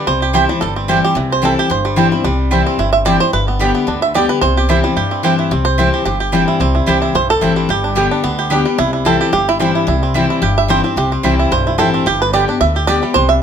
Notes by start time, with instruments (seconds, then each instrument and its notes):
Already playing: five-string banjo G3
0.07 upright bass C2, steel-string acoustic guitar C3, five-string banjo C5
0.22 five-string banjo G4
0.33 steel-string acoustic guitar E3 G3 C4 E4, mandolin C4 E4 C5 G5, five-string banjo C5
0.49 five-string banjo G3, steel-string acoustic guitar C4 E4
0.61 upright bass G1, steel-string acoustic guitar G2, five-string banjo A4
0.76 five-string banjo C4
0.88 steel-string acoustic guitar E3 G3 C4 E4, mandolin C4 E4 C5 G5, five-string banjo G4
1.04 five-string banjo G4
1.15 upright bass C2, steel-string acoustic guitar C3, five-string banjo E3
1.32 five-string banjo C5
1.42 steel-string acoustic guitar E3 G3 C4 E4, mandolin C4 E4 C5 G5, five-string banjo A4
1.59 five-string banjo G4
1.70 upright bass G1, steel-string acoustic guitar G2, five-string banjo C5
1.85 five-string banjo G3
1.96 steel-string acoustic guitar E3 G3 C4 E4, mandolin C4 E4 C5 G5, five-string banjo C4
2.11 five-string banjo G3, steel-string acoustic guitar C4 E4
2.24 upright bass C2, steel-string acoustic guitar C3, five-string banjo G3
2.51 steel-string acoustic guitar E3 G3 C4 E4, mandolin C4 E4 C5 G5, five-string banjo E4
2.67 five-string banjo C4
2.78 upright bass G1, steel-string acoustic guitar G2, five-string banjo E4
2.93 five-string banjo E5
3.05 steel-string acoustic guitar E3 G3 C4 E4, mandolin C4 E4 C5 G5, five-string banjo D5
3.20 steel-string acoustic guitar C4 E4, five-string banjo C5
3.33 upright bass G1, steel-string acoustic guitar G2, five-string banjo B4
3.48 five-string banjo B3
3.59 steel-string acoustic guitar D3 G3 B3 G4, five-string banjo G3, mandolin B3 G4 D5 G5
3.75 five-string banjo B3
3.87 upright bass D2, steel-string acoustic guitar D3, five-string banjo D4
4.02 five-string banjo E5
4.14 steel-string acoustic guitar D3 G3 B3 G4, mandolin B3 G4 D5 G5, five-string banjo D5
4.29 five-string banjo B4
4.41 upright bass C2, steel-string acoustic guitar C3, five-string banjo C5
4.57 five-string banjo G4
4.69 steel-string acoustic guitar E3 G3 C4 E4, mandolin C4 E4 C5 G5, five-string banjo E4
4.84 five-string banjo G3, steel-string acoustic guitar C4 E4
4.96 upright bass G2, steel-string acoustic guitar G2, five-string banjo G4
5.11 five-string banjo C4
5.23 steel-string acoustic guitar E3 G3 C4 E4, mandolin C4 E4 C5 G5, five-string banjo G4
5.39 five-string banjo E4
5.51 upright bass C2, steel-string acoustic guitar C3, five-string banjo C4
5.65 five-string banjo C5
5.78 steel-string acoustic guitar E3 G3 C4 E4, mandolin C4 E4 C5 G5, five-string banjo C4
5.94 five-string banjo G4
6.05 upright bass G1, steel-string acoustic guitar G2, five-string banjo G4
6.20 five-string banjo G4
6.32 steel-string acoustic guitar E3 G3 C4 E4, five-string banjo G3, mandolin C4 E4 C5 G5
6.48 five-string banjo E4
6.60 upright bass C2, steel-string acoustic guitar C3, five-string banjo C4
6.75 five-string banjo E4
6.86 upright bass C2, steel-string acoustic guitar E3 G3 C4 E4, mandolin C4 E4 C5 G5, five-string banjo G4
7.02 five-string banjo E4
7.14 upright bass B1, steel-string acoustic guitar G2, five-string banjo C5
7.30 five-string banjo A4
7.41 upright bass A1, steel-string acoustic guitar E3 G3 C4 E4, mandolin C4 E4 C5 G5, five-string banjo E4
7.56 five-string banjo G3
7.69 upright bass G1, steel-string acoustic guitar G2, five-string banjo G4
7.84 five-string banjo D4
7.95 steel-string acoustic guitar D3 G3 B3 G4, five-string banjo G3, mandolin B3 G4 D5 G5
8.11 five-string banjo D4
8.24 upright bass D2, steel-string acoustic guitar D3, five-string banjo B3
8.39 five-string banjo G4
8.50 steel-string acoustic guitar D3 G3 B3 G4, mandolin B3 G4 D5 G5, five-string banjo D4
8.65 five-string banjo G3, steel-string acoustic guitar B3 G4
8.78 upright bass C2, steel-string acoustic guitar C3, five-string banjo E4
8.93 five-string banjo E4
9.05 steel-string acoustic guitar E3 G3 C4 E4, mandolin C4 E4 C5 G5, five-string banjo A4
9.21 five-string banjo G4
9.33 upright bass G1, steel-string acoustic guitar G2, five-string banjo G4
9.49 five-string banjo E4
9.59 steel-string acoustic guitar E3 G3 C4 E4, five-string banjo G3, mandolin C4 E4 C5 G5
9.75 five-string banjo E4
9.87 upright bass C2, steel-string acoustic guitar C3, five-string banjo E4
10.03 five-string banjo C4
10.14 steel-string acoustic guitar E3 G3 C4 E4, five-string banjo G3, mandolin C4 E4 C5 G5
10.30 five-string banjo E4
10.42 upright bass G1, steel-string acoustic guitar G2, five-string banjo G4
10.58 five-string banjo E5
10.68 steel-string acoustic guitar E3 G3 C4 E4, mandolin C4 E4 C5 G5, five-string banjo C5
10.84 five-string banjo C4, steel-string acoustic guitar C4 E4
10.96 upright bass C2, steel-string acoustic guitar C3, five-string banjo G4
11.12 five-string banjo C4
11.23 upright bass C2, steel-string acoustic guitar E3 G3 C4 E4, five-string banjo G3, mandolin C4 E4 C5 G5
11.39 five-string banjo E4
11.51 upright bass B1, steel-string acoustic guitar G2, five-string banjo C5
11.67 five-string banjo E4
11.78 upright bass A1, steel-string acoustic guitar E3 G3 C4 E4, mandolin C4 E4 C5 G5, five-string banjo A4
11.94 five-string banjo C4
12.06 upright bass G1, steel-string acoustic guitar G2, five-string banjo G4
12.22 five-string banjo B4
12.33 steel-string acoustic guitar D3 G3 B3 G4, mandolin B3 G4 D5 G5, five-string banjo D5
12.48 steel-string acoustic guitar B3 G4, five-string banjo D4
12.60 upright bass D2, steel-string acoustic guitar D3, five-string banjo E5
12.76 five-string banjo G4
12.87 steel-string acoustic guitar D3 G3 B3 G4, mandolin B3 G4 D5 G5, five-string banjo D5
13.02 five-string banjo G3, steel-string acoustic guitar B3 G4
13.14 upright bass C2, steel-string acoustic guitar C3, five-string banjo C5
13.29 five-string banjo E5